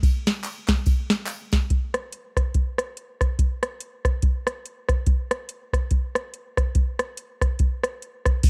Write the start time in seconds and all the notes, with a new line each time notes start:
0.03 kick, ride, tambourine
0.27 snare, ride, tambourine
0.44 clap, ride, tambourine
0.68 kick, snare, clap, ride, tambourine
0.86 kick, ride, tambourine
1.10 snare, ride, tambourine
1.26 clap, ride, tambourine
1.52 kick, snare, ride, tambourine
1.70 kick, closed hi-hat
1.94 cross-stick, closed hi-hat
2.12 closed hi-hat
2.37 kick, cross-stick, closed hi-hat
2.54 kick, closed hi-hat
2.78 cross-stick, closed hi-hat
2.97 closed hi-hat
3.21 kick, cross-stick, closed hi-hat
3.39 kick, closed hi-hat
3.63 cross-stick, closed hi-hat
3.80 closed hi-hat
4.05 kick, cross-stick, closed hi-hat
4.22 kick, closed hi-hat
4.47 cross-stick, closed hi-hat
4.66 closed hi-hat
4.89 kick, cross-stick, closed hi-hat
5.06 kick, closed hi-hat
5.31 cross-stick, closed hi-hat
5.49 closed hi-hat
5.73 kick, cross-stick, closed hi-hat
5.91 kick, closed hi-hat
6.15 cross-stick, closed hi-hat
6.34 closed hi-hat
6.57 kick, cross-stick, closed hi-hat
6.75 kick, closed hi-hat
6.99 cross-stick, closed hi-hat
7.17 closed hi-hat
7.41 kick, cross-stick, closed hi-hat
7.59 kick, closed hi-hat
7.84 cross-stick, closed hi-hat
8.02 closed hi-hat
8.26 kick, cross-stick, closed hi-hat
8.43 kick, crash, ride, tambourine